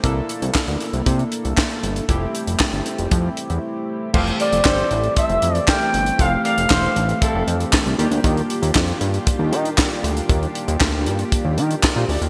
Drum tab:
CC |----------------|----------------|x---------------|----------------|
HH |x-xx-xxxxxxx-xxx|x-xx-xxxx-xx----|-xxx-xxxxxxx-xxx|x-xx-xxxx-xx-xxx|
CP |----x-------x---|----x-----------|----x-------x---|----x-------x---|
SD |----o-------o---|----o-----------|----o-------o---|----o-------o---|
BD |o---o---o---o---|o---o---o-------|o---o---o---o---|o---o---o---o---|

CC |----------------|----------------|
HH |xxxx-xxxx-xx--xx|xxxx--xxx-xx--ox|
CP |----x-------x---|----x-------x---|
SD |----o-------o---|----o-------o---|
BD |o---o---o---o---|o---o---o---o---|